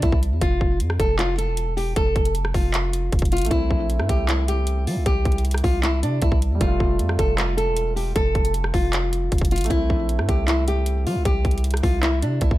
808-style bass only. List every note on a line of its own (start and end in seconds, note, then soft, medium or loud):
0.03 0.12 C2 loud
0.12 0.33 C2 loud
0.32 0.41 E2 loud
0.42 0.60 F1 loud
0.61 0.82 F1 loud
0.80 0.99 F2 loud
1.00 1.49 F1 loud
1.48 1.94 E1 loud
1.96 2.15 F1 loud
2.16 2.53 F1 loud
2.54 3.10 F1 loud
3.13 3.21 F1 loud
3.22 3.43 F1 loud
3.41 3.51 A1 loud
3.51 3.70 C2 loud
3.71 4.01 A#1 loud
4.00 4.09 G2 loud
4.09 4.88 C2 loud
4.87 4.98 G3 loud
4.96 5.06 C2 loud
5.06 5.25 C2 loud
5.25 5.63 C2 loud
5.64 6.04 C2 loud
6.03 6.21 C3 loud
6.22 6.31 C2 loud
6.32 6.53 C2 loud
6.51 6.60 E2 loud
6.61 6.79 F1 loud
6.80 7.01 F1 loud
7.00 7.18 F2 loud
7.19 7.69 F1 loud
7.67 8.13 E1 loud
8.16 8.34 F1 loud
8.35 8.72 F1 loud
8.74 9.30 F1 loud
9.32 9.41 F1 loud
9.41 9.62 F1 loud
9.61 9.70 A1 loud
9.71 9.89 C2 loud
9.90 10.20 A#1 loud
10.19 10.28 G2 loud
10.29 11.08 C2 loud
11.06 11.17 G3 loud
11.16 11.25 C2 loud
11.25 11.44 C2 loud
11.45 11.82 C2 loud
11.83 12.24 C2 loud
12.22 12.41 C3 loud
12.42 12.51 C2 loud
12.51 12.58 C2 loud